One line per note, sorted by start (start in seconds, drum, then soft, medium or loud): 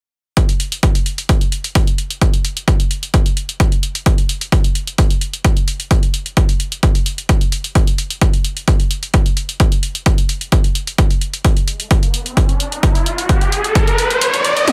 0.37 kick loud
0.37 closed hi-hat medium
0.49 closed hi-hat medium
0.60 closed hi-hat medium
0.72 closed hi-hat medium
0.83 kick loud
0.83 closed hi-hat medium
0.95 closed hi-hat medium
1.06 closed hi-hat medium
1.18 closed hi-hat medium
1.29 kick loud
1.29 closed hi-hat loud
1.41 closed hi-hat soft
1.52 closed hi-hat medium
1.64 closed hi-hat medium
1.75 kick loud
1.75 closed hi-hat medium
1.87 closed hi-hat medium
1.98 closed hi-hat medium
2.10 closed hi-hat medium
2.21 kick loud
2.21 closed hi-hat medium
2.34 closed hi-hat medium
2.45 closed hi-hat medium
2.57 closed hi-hat medium
2.68 kick loud
2.68 closed hi-hat medium
2.80 closed hi-hat medium
2.91 closed hi-hat medium
3.03 closed hi-hat medium
3.14 kick loud
3.14 closed hi-hat loud
3.26 closed hi-hat medium
3.37 closed hi-hat medium
3.49 closed hi-hat medium
3.60 kick loud
3.60 closed hi-hat medium
3.72 closed hi-hat medium
3.83 closed hi-hat medium
3.95 closed hi-hat medium
4.06 kick loud
4.06 closed hi-hat medium
4.18 closed hi-hat medium
4.29 closed hi-hat medium
4.41 closed hi-hat medium
4.52 kick loud
4.52 closed hi-hat medium
4.64 closed hi-hat medium
4.75 closed hi-hat medium
4.87 closed hi-hat soft
4.98 kick loud
4.98 closed hi-hat medium
5.10 closed hi-hat medium
5.21 closed hi-hat medium
5.33 closed hi-hat medium
5.45 kick loud
5.45 closed hi-hat medium
5.57 closed hi-hat medium
5.68 closed hi-hat medium
5.80 closed hi-hat medium
5.91 kick loud
5.91 closed hi-hat medium
6.03 closed hi-hat medium
6.14 closed hi-hat medium
6.26 closed hi-hat medium
6.37 kick loud
6.37 closed hi-hat medium
6.49 closed hi-hat medium
6.60 closed hi-hat medium
6.72 closed hi-hat medium
6.83 kick loud
6.83 closed hi-hat medium
6.95 closed hi-hat soft
7.06 closed hi-hat medium
7.18 closed hi-hat medium
7.29 kick loud
7.29 closed hi-hat medium
7.41 closed hi-hat soft
7.52 closed hi-hat medium
7.64 closed hi-hat soft
7.75 kick loud
7.75 closed hi-hat medium
7.87 closed hi-hat soft
7.98 closed hi-hat medium
8.10 closed hi-hat medium
8.21 kick loud
8.21 closed hi-hat medium
8.33 closed hi-hat medium
8.44 closed hi-hat medium
8.57 closed hi-hat soft
8.68 kick loud
8.68 closed hi-hat medium
8.80 closed hi-hat soft
8.91 closed hi-hat medium
9.03 closed hi-hat soft
9.14 kick loud
9.14 closed hi-hat medium
9.26 closed hi-hat soft
9.37 closed hi-hat medium
9.49 closed hi-hat soft
9.60 kick loud
9.60 closed hi-hat medium
9.72 closed hi-hat soft
9.83 closed hi-hat medium
9.95 closed hi-hat medium
10.06 kick loud
10.06 closed hi-hat medium
10.18 closed hi-hat medium
10.29 closed hi-hat medium
10.41 closed hi-hat soft
10.52 kick loud
10.52 closed hi-hat medium
10.64 closed hi-hat soft
10.75 closed hi-hat medium
10.87 closed hi-hat medium
10.98 kick loud
10.98 closed hi-hat medium
11.10 closed hi-hat soft
11.21 closed hi-hat medium
11.34 closed hi-hat medium
11.45 kick loud
11.45 closed hi-hat medium
11.45 riser medium
11.57 closed hi-hat soft
11.68 closed hi-hat medium
11.80 closed hi-hat medium
11.91 kick loud
11.91 closed hi-hat medium
12.03 closed hi-hat medium
12.14 closed hi-hat medium
12.26 closed hi-hat medium
12.37 kick loud
12.37 closed hi-hat medium
12.49 closed hi-hat soft
12.60 closed hi-hat medium
12.72 closed hi-hat soft
12.83 kick loud
12.83 closed hi-hat medium
12.95 closed hi-hat soft
13.06 closed hi-hat medium
13.18 closed hi-hat medium
13.29 kick loud
13.29 closed hi-hat medium
13.41 closed hi-hat medium
13.52 closed hi-hat medium
13.64 closed hi-hat medium
13.75 kick loud
13.75 closed hi-hat medium
13.87 closed hi-hat medium
13.98 closed hi-hat medium
14.10 closed hi-hat medium
14.21 closed hi-hat medium
14.34 closed hi-hat soft
14.45 closed hi-hat medium
14.57 closed hi-hat medium
14.68 closed hi-hat medium
14.68 high tom medium